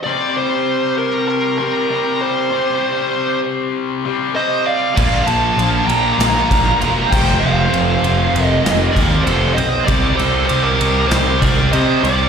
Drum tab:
CC |--------|--------|x------x|--------|
RD |--------|--------|-xxxxxx-|-xxxxxxx|
SD |--------|--------|----o---|----o---|
BD |--------|--------|o----o-o|-----o--|

CC |--------|
RD |xxxxxxxx|
SD |----o---|
BD |o----o--|